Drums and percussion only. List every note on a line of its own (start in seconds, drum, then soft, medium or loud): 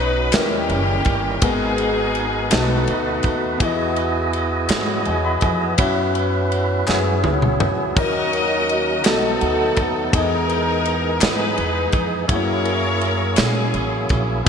0.32 snare loud
0.32 clap loud
0.32 ride bell medium
0.69 ride bell soft
1.05 kick medium
1.05 ride bell soft
1.42 kick loud
1.42 ride bell medium
1.78 ride bell soft
2.15 ride bell soft
2.51 snare loud
2.51 clap loud
2.51 ride bell medium
2.87 ride bell soft
3.23 kick medium
3.23 ride bell medium
3.60 kick loud
3.60 ride bell medium
3.96 ride bell soft
4.33 ride bell soft
4.69 snare loud
4.69 clap loud
4.69 ride bell medium
5.05 ride bell soft
5.41 kick medium
5.41 ride bell soft
5.78 kick loud
5.78 ride bell medium
6.15 ride bell soft
6.52 ride bell soft
6.87 snare medium
6.87 clap loud
7.24 high tom medium
7.42 mid tom medium
7.60 mid tom loud
7.96 kick loud
7.96 crash medium
8.33 ride bell soft
8.69 ride bell soft
9.04 snare loud
9.04 clap loud
9.04 ride bell medium
9.41 ride bell soft
9.76 kick medium
9.76 ride bell soft
10.13 kick loud
10.13 ride bell medium
10.50 ride bell soft
10.85 ride bell soft
11.21 snare loud
11.21 clap loud
11.21 ride bell medium
11.58 ride bell soft
11.92 kick medium
11.92 ride bell soft
12.29 kick loud
12.29 ride bell medium
12.65 ride bell soft
13.01 ride bell soft
13.36 snare loud
13.36 clap loud
13.36 ride bell medium
13.74 ride bell soft
14.09 kick medium
14.09 ride bell soft